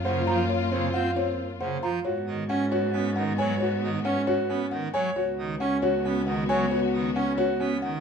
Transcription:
0.00 1.92 F#2 medium
0.00 1.79 A#3 medium
0.00 1.79 F4 medium
0.05 0.22 C#3 medium
0.05 0.34 C5 medium
0.05 0.34 F#5 medium
0.27 0.44 F3 medium
0.27 0.56 F4 medium
0.27 0.56 A#5 medium
0.49 0.78 C#5 medium
0.72 0.89 C#3 medium
0.72 1.00 C4 medium
0.94 1.11 C4 medium
0.94 1.23 F4 medium
0.94 1.23 F#5 medium
1.16 1.45 C4 medium
1.16 1.45 C#5 medium
1.61 1.77 C#3 medium
1.61 1.89 C5 medium
1.61 1.89 F#5 medium
1.83 1.99 F3 medium
1.83 2.12 F4 medium
1.83 2.12 A#5 medium
2.05 5.03 G#2 medium
2.05 4.90 B3 medium
2.05 4.90 F#4 medium
2.05 2.34 F#4 medium
2.05 2.34 C#5 medium
2.27 2.44 D#3 medium
2.49 2.66 C#4 medium
2.49 2.78 C#4 medium
2.49 2.78 F#5 medium
2.72 3.01 F#4 loud
2.72 3.01 C#5 medium
2.93 3.10 B3 medium
2.93 3.23 C#4 medium
3.16 3.33 D#3 medium
3.16 3.45 F#5 medium
3.38 3.55 F#3 medium
3.38 3.67 C#5 loud
3.38 3.67 G#5 medium
3.60 3.90 F#4 medium
3.60 3.89 C#5 medium
3.83 3.99 D#3 medium
4.05 4.34 C#4 loud
4.05 4.22 C#4 medium
4.05 4.34 F#5 medium
4.27 4.56 F#4 loud
4.27 4.56 C#5 loud
4.49 4.66 B3 medium
4.49 4.78 C#4 medium
4.71 4.88 D#3 medium
4.71 5.00 F#5 medium
4.94 5.10 F#3 medium
4.94 5.23 C#5 loud
4.94 5.23 G#5 medium
5.16 8.00 C#2 medium
5.16 8.00 B3 medium
5.16 8.00 F#4 medium
5.16 5.45 F#4 medium
5.16 5.45 C#5 medium
5.38 5.55 D#3 medium
5.60 5.77 C#4 medium
5.60 5.89 C#4 medium
5.60 5.89 F#5 medium
5.82 6.12 F#4 medium
5.82 6.12 C#5 loud
6.05 6.22 B3 medium
6.05 6.34 C#4 medium
6.27 6.44 D#3 medium
6.27 6.56 F#5 medium
6.49 6.66 F#3 loud
6.49 6.78 C#5 loud
6.49 6.78 G#5 medium
6.71 7.00 F#4 medium
6.71 7.00 C#5 medium
6.94 7.10 D#3 medium
7.16 7.45 C#4 medium
7.16 7.33 C#4 medium
7.16 7.45 F#5 medium
7.38 7.67 F#4 loud
7.38 7.67 C#5 loud
7.60 7.77 B3 medium
7.60 7.89 C#4 medium
7.82 8.00 D#3 medium
7.82 8.00 F#5 medium

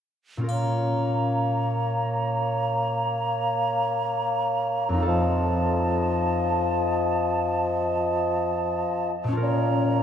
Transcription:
0.37 4.27 A#2 soft
0.37 4.29 C#4 soft
0.37 4.31 F4 soft
0.44 4.34 A#4 soft
0.48 5.03 A#3 soft
0.48 5.02 C#5 soft
0.48 5.03 A#5 soft
0.48 triangle soft
4.89 8.79 F2 soft
4.93 8.83 D#4 soft
4.98 8.88 F4 soft
5.02 8.92 A4 soft
5.07 9.12 F3 soft
5.07 9.12 D#5 soft
5.07 9.12 A5 soft
9.24 10.03 A#2 soft
9.28 10.03 C#4 soft
9.33 10.03 F4 soft
9.37 10.03 A#4 soft
9.42 10.03 A#2 soft
9.42 10.03 C#5 soft
9.42 10.03 A#5 soft

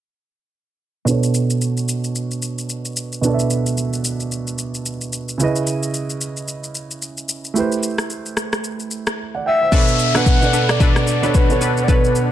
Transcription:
1.05 3.18 B2 medium
1.05 3.19 B3 medium
1.05 3.20 D4 medium
1.05 shaker medium
1.09 3.21 A4 medium
1.09 3.21 C#5 medium
1.23 shaker medium
1.34 shaker medium
1.50 shaker medium
1.61 shaker medium
1.77 shaker soft
1.89 shaker loud
2.04 shaker soft
2.15 shaker medium
2.31 shaker soft
2.42 shaker medium
2.58 shaker soft
2.69 shaker medium
2.85 shaker soft
2.96 shaker medium
3.12 shaker soft
3.21 5.35 B2 medium
3.21 5.35 B3 medium
3.21 5.36 D4 medium
3.21 shaker medium
3.26 5.37 A4 medium
3.26 3.33 D5 medium
3.34 5.41 E5 medium
3.39 shaker medium
3.50 shaker medium
3.66 shaker medium
3.77 shaker medium
3.93 shaker soft
4.04 shaker loud
4.20 shaker soft
4.32 shaker medium
4.47 shaker soft
4.58 shaker medium
4.74 shaker soft
4.86 shaker medium
5.01 shaker medium
5.13 shaker medium
5.29 shaker medium
5.38 7.51 C#3 medium
5.38 7.52 C#4 medium
5.38 7.52 E4 medium
5.38 shaker medium
5.42 7.53 B4 medium
5.42 7.54 D#5 medium
5.56 shaker medium
5.67 shaker medium
5.83 shaker medium
5.94 shaker medium
6.10 shaker soft
6.21 shaker loud
6.37 shaker soft
6.48 shaker medium
6.64 shaker soft
6.75 shaker medium
6.91 shaker soft
7.02 shaker medium
7.17 shaker medium
7.29 shaker loud
7.45 shaker medium
7.54 9.67 A3 medium
7.54 9.68 E4 medium
7.54 9.69 G4 medium
7.54 shaker medium
7.58 9.16 B4 medium
7.58 9.17 C5 medium
7.72 shaker medium
7.83 shaker medium
7.98 cross-stick medium
7.98 shaker medium
8.10 shaker medium
8.26 shaker soft
8.37 cross-stick medium
8.37 shaker loud
8.53 cross-stick medium
8.53 shaker soft
8.64 shaker medium
8.80 shaker soft
8.91 shaker medium
9.07 cross-stick medium
9.07 shaker soft
9.35 9.45 D5 medium
9.35 9.45 F#5 medium
9.46 9.60 E5 medium
9.46 10.18 E5 loud
9.46 9.61 G5 medium
9.62 9.87 C5 medium
9.62 9.87 E5 medium
9.71 10.05 B2 medium
9.71 10.05 B3 medium
9.71 9.84 D4 medium
9.71 12.32 D4 medium
9.71 10.06 D4 medium
9.71 9.84 A4 medium
9.71 12.32 A4 medium
9.71 10.06 A4 medium
9.71 12.32 B4 medium
9.71 9.84 B4 loud
9.71 10.07 C#5 medium
9.71 12.32 F#5 medium
9.71 kick loud
9.71 downlifter medium
9.71 shaker medium
9.88 shaker medium
9.99 shaker medium
10.14 10.35 B2 medium
10.14 10.36 B3 medium
10.14 10.50 D4 medium
10.14 10.36 D4 medium
10.14 10.51 A4 medium
10.14 10.36 A4 medium
10.14 10.51 B4 medium
10.14 10.37 B4 medium
10.14 10.72 F#5 loud
10.14 cross-stick medium
10.14 shaker medium
10.26 kick medium
10.26 shaker medium
10.41 10.73 B2 medium
10.41 10.73 B3 medium
10.41 10.74 D4 medium
10.41 10.74 A4 medium
10.41 10.75 D5 medium
10.41 shaker soft
10.53 10.78 D4 medium
10.53 10.78 A4 medium
10.53 10.79 B4 medium
10.53 shaker loud
10.69 11.37 D5 loud
10.69 cross-stick loud
10.69 shaker soft
10.79 11.13 B2 medium
10.79 11.14 B3 medium
10.79 11.19 D4 loud
10.79 11.14 D4 medium
10.79 11.19 A4 medium
10.79 11.14 A4 medium
10.79 11.19 B4 loud
10.79 11.15 D5 medium
10.79 kick loud
10.79 shaker medium
10.96 cross-stick medium
10.96 shaker soft
11.07 shaker medium
11.22 11.43 B2 medium
11.22 11.44 B3 medium
11.22 11.59 D4 medium
11.22 11.44 D4 medium
11.22 11.59 A4 medium
11.22 11.44 A4 medium
11.22 11.59 B4 medium
11.22 11.45 C#5 medium
11.22 shaker soft
11.34 11.83 B4 loud
11.34 kick medium
11.34 shaker medium
11.49 11.81 B2 medium
11.49 11.82 B3 medium
11.49 11.82 D4 medium
11.49 11.82 A4 medium
11.49 11.83 C#5 medium
11.49 shaker medium
11.61 11.86 D4 medium
11.61 11.87 A4 medium
11.61 11.87 B4 medium
11.61 shaker loud
11.77 shaker medium
11.84 12.21 B2 medium
11.84 11.91 D5 medium
11.88 12.22 B3 medium
11.88 12.00 D4 medium
11.88 12.22 D4 medium
11.88 12.01 A4 medium
11.88 12.22 A4 medium
11.88 12.01 B4 loud
11.88 12.32 B4 loud
11.88 12.23 C#5 medium
11.88 kick loud
11.88 shaker medium
12.04 shaker medium
12.15 shaker medium

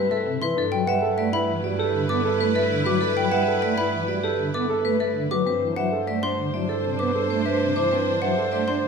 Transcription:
0.00 0.40 G2 medium
0.00 0.37 C4 medium
0.00 0.37 E4 medium
0.00 0.15 B4 loud
0.00 0.37 B4 medium
0.11 0.30 A4 medium
0.11 0.31 A4 medium
0.11 0.31 E5 medium
0.26 0.37 C3 medium
0.41 0.53 E3 loud
0.41 0.61 E4 loud
0.41 0.61 B4 loud
0.41 0.61 C6 medium
0.56 5.30 G2 medium
0.56 0.76 D4 medium
0.56 5.27 E4 loud
0.56 0.77 A4 loud
0.56 5.27 B4 loud
0.56 5.27 B4 medium
0.71 0.83 F#3 medium
0.71 0.92 G5 loud
0.87 0.99 G3 medium
0.87 1.07 B4 loud
0.87 1.07 E5 medium
0.87 1.07 F#5 loud
1.02 1.22 A4 medium
1.17 1.29 A3 medium
1.17 1.38 D5 medium
1.17 1.38 E5 medium
1.33 1.53 E4 loud
1.33 1.53 B4 medium
1.33 1.53 B5 loud
1.48 1.60 E3 loud
1.63 1.75 G3 medium
1.63 1.83 F#4 medium
1.63 1.84 D5 medium
1.79 1.99 G4 medium
1.79 1.99 A4 loud
1.94 2.06 D3 loud
2.09 2.21 B3 medium
2.09 2.29 A4 medium
2.09 2.29 B4 medium
2.09 2.29 D6 medium
2.25 2.45 A4 loud
2.40 2.52 A3 loud
2.40 2.60 B4 loud
2.55 2.75 A4 medium
2.55 2.75 B4 medium
2.55 2.75 E5 medium
2.71 2.82 D3 medium
2.85 2.97 F#3 loud
2.85 3.06 F#4 medium
2.85 3.06 B4 loud
2.85 3.06 D6 medium
3.01 3.21 D4 medium
3.01 3.21 A4 loud
3.17 3.28 F#3 medium
3.17 3.37 G5 loud
3.32 3.43 G3 medium
3.32 3.52 B4 loud
3.32 3.52 E5 medium
3.32 3.52 F#5 loud
3.47 3.67 A4 medium
3.62 3.74 A3 medium
3.62 3.82 D5 medium
3.62 3.82 E5 medium
3.77 3.98 E4 loud
3.77 3.98 B4 medium
3.77 3.98 B5 loud
3.93 4.04 E3 loud
4.08 4.19 G3 medium
4.08 4.28 F#4 medium
4.08 4.28 D5 medium
4.24 4.44 G4 medium
4.24 4.44 A4 medium
4.38 4.50 D3 loud
4.54 4.66 B3 medium
4.54 4.74 A4 medium
4.54 4.74 B4 medium
4.54 4.74 D6 medium
4.69 4.89 A4 loud
4.84 4.96 A3 medium
4.84 5.05 B4 loud
5.00 5.20 A4 medium
5.00 5.20 B4 medium
5.00 5.20 E5 medium
5.15 5.26 D3 medium
5.30 5.42 F#3 loud
5.30 5.51 F#4 medium
5.30 5.45 B4 loud
5.30 5.51 D6 medium
5.46 8.88 G2 medium
5.46 5.66 C4 medium
5.46 8.88 D4 medium
5.46 5.66 B4 medium
5.46 8.88 C5 medium
5.62 5.73 E3 medium
5.76 5.88 F#3 medium
5.76 5.97 B4 medium
5.76 5.97 E5 medium
5.76 5.97 F#5 loud
5.92 6.12 A4 medium
6.07 6.19 A3 medium
6.07 6.27 D5 medium
6.07 6.27 E5 medium
6.23 6.43 D4 medium
6.23 6.43 C5 medium
6.23 6.43 C6 loud
6.38 6.49 D3 loud
6.53 6.65 F#3 medium
6.53 6.73 E4 medium
6.53 6.73 D5 medium
6.69 6.89 A4 medium
6.84 6.95 C3 medium
6.99 7.11 B3 medium
6.99 7.19 B4 medium
6.99 7.19 D6 medium
7.15 7.35 A4 medium
7.30 7.41 A3 medium
7.30 7.50 C5 medium
7.45 7.65 B4 medium
7.45 7.65 E5 medium
7.61 7.72 C3 medium
7.76 7.88 E3 medium
7.76 7.96 E4 medium
7.76 7.96 C5 medium
7.76 7.96 D6 medium
7.91 8.11 C4 medium
7.91 8.11 B4 medium
8.07 8.18 E3 medium
8.22 8.34 F#3 medium
8.22 8.42 B4 medium
8.22 8.42 E5 medium
8.22 8.42 F#5 medium
8.38 8.57 A4 medium
8.52 8.64 A3 medium
8.52 8.72 D5 medium
8.52 8.72 E5 medium
8.67 8.88 D4 medium
8.67 8.87 C5 medium
8.67 8.88 C6 medium
8.83 8.88 D3 medium

